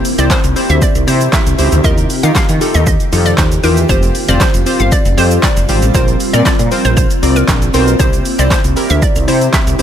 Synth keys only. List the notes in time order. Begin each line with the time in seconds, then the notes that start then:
0.18 C4 E4 G4 C5
0.56 C4 E4 G4 C5
1.07 C4 E4 G4 C5
1.58 C4 E4 G4 C5
1.84 D#4 F4 G4 A#4
2.23 D#4 F4 G4 A#4
2.61 D#4 F4 G4 A4
3.12 D#4 F4 G4 A4
3.64 D#4 F4 G4 C5
3.89 C4 F4 G4 C5
4.28 C4 F4 G4 C5
4.66 C4 F4 G4 C5
5.17 C4 F4 G4 C5
5.69 C4 F4 G4 C5
5.94 C4 F4 A#4 C5
6.34 C4 F4 A#4 D5
6.71 C4 F4 A#4 C5
7.22 C4 F4 A#4 D5
7.74 C4 F4 A#4 C5
7.99 C4 E4 G4 C5
8.39 C4 E4 G4 C5
8.76 C4 E4 G4 A#4
9.28 C4 E4 G4 C5
9.79 C4 E4 G4 C5